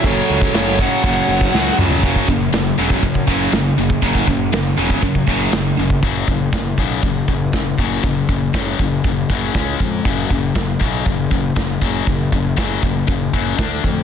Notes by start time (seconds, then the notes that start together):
0.03 F#1 F#2 C#3 F#3 A4 C#5, kick, crash
0.29 C#2, crash
0.41 kick
0.53 F#1 F#2 C#3 F#3 A4 C#5, snare, crash
0.79 F#2 C#3 F#3 C#5 F#5, kick, crash
1.04 F#1 F#2 C#3 F#3, kick, crash
1.28 F#1, crash
1.41 kick
1.54 C#2 F#2 C#3 F#3, snare
1.78 C#2 F#2 C#3 F#3, mid tom
1.91 floor tom
2.03 F#1 F#2 C#3 F#3, kick, ride bell
2.16 kick
2.28 F#1 F#2 C#3, kick
2.52 F#1 F#2 C#3, snare, ride bell
2.78 E1 F#2 C#3 F#3
2.90 kick
3.03 F#2 C#3, kick, ride bell
3.15 kick
3.27 F#1 F#2 C#3 F#3, kick
3.52 F#1 F#2 C#3, snare, ride bell
3.77 F#1 F#2 C#3
3.90 kick
4.02 F#1 F#2 C#3 F#3, kick, ride bell
4.15 kick
4.27 F#1 F#2 C#3, kick
4.53 F#1 F#2 C#3, snare, ride bell
4.77 E1 F#2 C#3 F#3
4.90 kick
5.02 F#2 C#3, kick, ride bell
5.15 kick
5.28 F#1 F#2 C#3 F#3, kick
5.52 F#1 F#2 C#3, snare, ride bell
5.78 F#1 F#2 C#3
5.90 kick
6.02 F#1 F#2 C#3 F#3, kick, open hi-hat
6.28 F#1 F#2 C#3, kick, open hi-hat
6.53 F#1 F#2 C#3, kick, snare, open hi-hat
6.78 B1 F#2 C#3 F#3, kick, open hi-hat
7.02 F#1 F#2 C#3, kick, open hi-hat
7.28 F#1 F#2 C#3, kick, open hi-hat
7.53 F#1 F#2 C#3, kick, snare, open hi-hat
7.78 F#1 F#2 C#3 F#3, kick, open hi-hat
8.03 F#1 F#2 C#3, kick, open hi-hat
8.29 F#1 F#2 C#3, kick, open hi-hat
8.54 F#1 F#2 C#3 F#3, kick, snare, open hi-hat
8.79 F#1 F#2 C#3, kick, open hi-hat
9.04 F#1 F#2 C#3, kick, open hi-hat
9.29 F#1 F#2 C#3 F#3, kick, open hi-hat
9.54 C#2 C#3 G#3 C#4, kick, snare, open hi-hat
9.80 F2 C#3 G#3, kick, open hi-hat
10.05 F#1 F#2 C#3 F#3, kick, open hi-hat
10.30 F#1 F#2 C#3, kick, open hi-hat
10.55 F#1 F#2 C#3, kick, snare, open hi-hat
10.79 B1 F#2 C#3 F#3, kick, open hi-hat
11.06 F#1 F#2 C#3, kick, open hi-hat
11.31 F#1 F#2 C#3, kick, open hi-hat
11.56 F#1 F#2 C#3, kick, snare, open hi-hat
11.81 F#1 F#2 C#3 F#3, kick, open hi-hat
12.06 F#1 F#2 C#3, kick, open hi-hat
12.32 F#1 F#2 C#3, kick, open hi-hat
12.57 F#1 F#2 C#3 F#3, kick, snare, open hi-hat
12.82 F#1 F#2 C#3, kick, open hi-hat
13.07 F#1 F#2 C#3, kick, open hi-hat
13.33 F#1 F#2 C#3 F#3, kick, open hi-hat
13.57 D2 D3 A3 D4, kick, snare, open hi-hat
13.83 F2 D3 A3, kick, open hi-hat